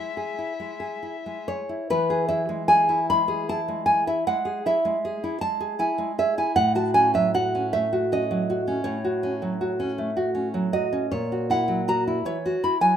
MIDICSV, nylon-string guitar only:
0, 0, Header, 1, 2, 480
1, 0, Start_track
1, 0, Key_signature, 4, "major"
1, 0, Tempo, 841515
1, 1070, Tempo, 789474
1, 1071, Time_signature, 12, 3, 24, 8
1, 2990, Tempo, 769231
1, 4910, Tempo, 750939
1, 8015, End_track
2, 0, Start_track
2, 0, Title_t, "Nylon-string guitar"
2, 0, Program_c, 0, 24
2, 0, Note_on_c, 0, 56, 36
2, 0, Note_on_c, 0, 64, 35
2, 58, Note_off_c, 0, 64, 0
2, 97, Note_on_c, 0, 68, 40
2, 181, Note_off_c, 0, 56, 0
2, 220, Note_on_c, 0, 64, 40
2, 297, Note_off_c, 0, 68, 0
2, 340, Note_on_c, 0, 56, 35
2, 418, Note_off_c, 0, 64, 0
2, 455, Note_on_c, 0, 68, 40
2, 539, Note_off_c, 0, 56, 0
2, 585, Note_on_c, 0, 64, 37
2, 657, Note_off_c, 0, 68, 0
2, 719, Note_on_c, 0, 56, 35
2, 782, Note_off_c, 0, 64, 0
2, 843, Note_on_c, 0, 73, 66
2, 844, Note_on_c, 0, 68, 38
2, 910, Note_off_c, 0, 56, 0
2, 966, Note_on_c, 0, 64, 37
2, 1029, Note_off_c, 0, 68, 0
2, 1066, Note_off_c, 0, 73, 0
2, 1077, Note_off_c, 0, 64, 0
2, 1085, Note_on_c, 0, 52, 73
2, 1088, Note_on_c, 0, 71, 91
2, 1206, Note_on_c, 0, 68, 59
2, 1313, Note_off_c, 0, 71, 0
2, 1319, Note_on_c, 0, 76, 89
2, 1326, Note_on_c, 0, 64, 53
2, 1395, Note_off_c, 0, 68, 0
2, 1442, Note_on_c, 0, 56, 56
2, 1515, Note_off_c, 0, 64, 0
2, 1550, Note_off_c, 0, 76, 0
2, 1559, Note_on_c, 0, 80, 94
2, 1563, Note_on_c, 0, 68, 60
2, 1634, Note_off_c, 0, 56, 0
2, 1685, Note_on_c, 0, 64, 56
2, 1754, Note_off_c, 0, 68, 0
2, 1791, Note_off_c, 0, 80, 0
2, 1813, Note_on_c, 0, 56, 55
2, 1813, Note_on_c, 0, 83, 90
2, 1875, Note_off_c, 0, 64, 0
2, 1924, Note_on_c, 0, 68, 58
2, 1998, Note_off_c, 0, 56, 0
2, 2036, Note_off_c, 0, 83, 0
2, 2051, Note_on_c, 0, 64, 53
2, 2054, Note_on_c, 0, 81, 93
2, 2113, Note_off_c, 0, 68, 0
2, 2169, Note_on_c, 0, 56, 53
2, 2236, Note_off_c, 0, 64, 0
2, 2273, Note_off_c, 0, 81, 0
2, 2275, Note_on_c, 0, 68, 54
2, 2275, Note_on_c, 0, 80, 86
2, 2354, Note_off_c, 0, 56, 0
2, 2395, Note_off_c, 0, 80, 0
2, 2406, Note_on_c, 0, 76, 80
2, 2408, Note_on_c, 0, 64, 52
2, 2467, Note_off_c, 0, 68, 0
2, 2499, Note_off_c, 0, 52, 0
2, 2521, Note_off_c, 0, 76, 0
2, 2525, Note_on_c, 0, 56, 57
2, 2526, Note_on_c, 0, 78, 99
2, 2593, Note_off_c, 0, 64, 0
2, 2636, Note_on_c, 0, 68, 54
2, 2711, Note_off_c, 0, 56, 0
2, 2749, Note_off_c, 0, 78, 0
2, 2762, Note_on_c, 0, 64, 54
2, 2766, Note_on_c, 0, 76, 88
2, 2826, Note_off_c, 0, 68, 0
2, 2878, Note_on_c, 0, 56, 53
2, 2947, Note_off_c, 0, 64, 0
2, 2999, Note_on_c, 0, 68, 58
2, 3066, Note_off_c, 0, 56, 0
2, 3117, Note_on_c, 0, 64, 57
2, 3187, Note_off_c, 0, 68, 0
2, 3218, Note_off_c, 0, 76, 0
2, 3224, Note_off_c, 0, 64, 0
2, 3226, Note_on_c, 0, 56, 51
2, 3227, Note_on_c, 0, 81, 91
2, 3347, Note_on_c, 0, 68, 61
2, 3419, Note_off_c, 0, 56, 0
2, 3457, Note_off_c, 0, 81, 0
2, 3462, Note_on_c, 0, 64, 52
2, 3465, Note_on_c, 0, 80, 72
2, 3540, Note_off_c, 0, 68, 0
2, 3582, Note_on_c, 0, 56, 51
2, 3658, Note_off_c, 0, 64, 0
2, 3698, Note_off_c, 0, 80, 0
2, 3709, Note_on_c, 0, 68, 55
2, 3711, Note_on_c, 0, 76, 85
2, 3778, Note_off_c, 0, 56, 0
2, 3829, Note_off_c, 0, 76, 0
2, 3829, Note_on_c, 0, 64, 54
2, 3831, Note_on_c, 0, 80, 83
2, 3902, Note_off_c, 0, 68, 0
2, 3939, Note_off_c, 0, 80, 0
2, 3940, Note_on_c, 0, 45, 69
2, 3941, Note_on_c, 0, 78, 100
2, 3950, Note_off_c, 0, 64, 0
2, 4062, Note_on_c, 0, 66, 58
2, 4063, Note_off_c, 0, 78, 0
2, 4066, Note_on_c, 0, 81, 85
2, 4179, Note_off_c, 0, 81, 0
2, 4181, Note_on_c, 0, 80, 90
2, 4184, Note_on_c, 0, 61, 55
2, 4258, Note_off_c, 0, 66, 0
2, 4303, Note_on_c, 0, 54, 56
2, 4306, Note_off_c, 0, 80, 0
2, 4309, Note_on_c, 0, 76, 86
2, 4380, Note_off_c, 0, 61, 0
2, 4431, Note_off_c, 0, 76, 0
2, 4431, Note_on_c, 0, 66, 60
2, 4433, Note_on_c, 0, 78, 88
2, 4501, Note_off_c, 0, 54, 0
2, 4559, Note_on_c, 0, 61, 55
2, 4626, Note_off_c, 0, 66, 0
2, 4664, Note_off_c, 0, 78, 0
2, 4672, Note_on_c, 0, 57, 58
2, 4672, Note_on_c, 0, 76, 88
2, 4748, Note_off_c, 0, 61, 0
2, 4795, Note_on_c, 0, 66, 58
2, 4863, Note_off_c, 0, 57, 0
2, 4900, Note_off_c, 0, 76, 0
2, 4917, Note_on_c, 0, 61, 55
2, 4921, Note_on_c, 0, 75, 86
2, 4983, Note_off_c, 0, 66, 0
2, 5036, Note_on_c, 0, 54, 58
2, 5104, Note_off_c, 0, 61, 0
2, 5158, Note_on_c, 0, 66, 61
2, 5221, Note_off_c, 0, 54, 0
2, 5271, Note_on_c, 0, 61, 57
2, 5341, Note_off_c, 0, 66, 0
2, 5353, Note_off_c, 0, 45, 0
2, 5369, Note_off_c, 0, 75, 0
2, 5376, Note_on_c, 0, 73, 85
2, 5381, Note_on_c, 0, 45, 62
2, 5457, Note_off_c, 0, 61, 0
2, 5507, Note_on_c, 0, 66, 54
2, 5627, Note_on_c, 0, 61, 55
2, 5695, Note_off_c, 0, 66, 0
2, 5747, Note_on_c, 0, 54, 53
2, 5815, Note_off_c, 0, 61, 0
2, 5868, Note_on_c, 0, 66, 57
2, 5936, Note_off_c, 0, 54, 0
2, 5988, Note_on_c, 0, 61, 57
2, 6057, Note_off_c, 0, 66, 0
2, 6106, Note_on_c, 0, 57, 53
2, 6178, Note_off_c, 0, 61, 0
2, 6224, Note_on_c, 0, 66, 58
2, 6298, Note_off_c, 0, 57, 0
2, 6315, Note_off_c, 0, 73, 0
2, 6339, Note_on_c, 0, 61, 53
2, 6418, Note_off_c, 0, 66, 0
2, 6463, Note_on_c, 0, 54, 54
2, 6536, Note_off_c, 0, 61, 0
2, 6584, Note_on_c, 0, 66, 56
2, 6585, Note_on_c, 0, 75, 81
2, 6659, Note_off_c, 0, 54, 0
2, 6709, Note_on_c, 0, 61, 51
2, 6781, Note_off_c, 0, 66, 0
2, 6805, Note_off_c, 0, 45, 0
2, 6821, Note_off_c, 0, 75, 0
2, 6830, Note_on_c, 0, 73, 77
2, 6831, Note_on_c, 0, 46, 70
2, 6832, Note_off_c, 0, 61, 0
2, 6961, Note_on_c, 0, 66, 54
2, 7064, Note_off_c, 0, 73, 0
2, 7076, Note_on_c, 0, 64, 52
2, 7081, Note_on_c, 0, 78, 84
2, 7152, Note_off_c, 0, 66, 0
2, 7191, Note_on_c, 0, 54, 55
2, 7269, Note_off_c, 0, 64, 0
2, 7310, Note_off_c, 0, 78, 0
2, 7319, Note_on_c, 0, 66, 58
2, 7323, Note_on_c, 0, 82, 93
2, 7386, Note_off_c, 0, 54, 0
2, 7441, Note_off_c, 0, 82, 0
2, 7443, Note_on_c, 0, 64, 49
2, 7510, Note_off_c, 0, 66, 0
2, 7555, Note_off_c, 0, 46, 0
2, 7558, Note_on_c, 0, 52, 52
2, 7561, Note_on_c, 0, 73, 89
2, 7630, Note_off_c, 0, 64, 0
2, 7688, Note_on_c, 0, 66, 53
2, 7747, Note_off_c, 0, 52, 0
2, 7786, Note_off_c, 0, 73, 0
2, 7802, Note_on_c, 0, 64, 49
2, 7803, Note_on_c, 0, 83, 84
2, 7871, Note_off_c, 0, 66, 0
2, 7912, Note_on_c, 0, 54, 50
2, 7913, Note_off_c, 0, 83, 0
2, 7916, Note_on_c, 0, 80, 82
2, 7988, Note_off_c, 0, 64, 0
2, 8015, Note_off_c, 0, 54, 0
2, 8015, Note_off_c, 0, 80, 0
2, 8015, End_track
0, 0, End_of_file